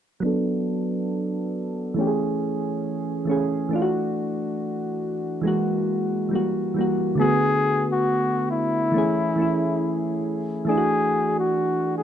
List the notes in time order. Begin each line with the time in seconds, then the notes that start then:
0.20 F#3 B3
0.25 D4 A4
1.94 E3 A3
1.99 C#4 G4
2.07 G#4
3.25 E3 A3
3.29 C#4 G#4
3.69 E3 A3
3.73 D4 F4
3.82 F#4
5.41 E3 G#3 A#3
5.47 F#4
6.29 E3 G3
6.33 A#3 F#4
6.74 E3 G3
6.79 A#3 F#4
7.15 D3 A3
7.19 B3 F#4 G#4
7.92 F#4
8.50 E4
8.92 E3 A3
8.96 C#4 G#4
9.36 E3 A3
9.40 C#4 E4
10.65 E3 A3 G#4
10.69 D4 E4
10.78 F#4
11.40 F#4
11.98 G#4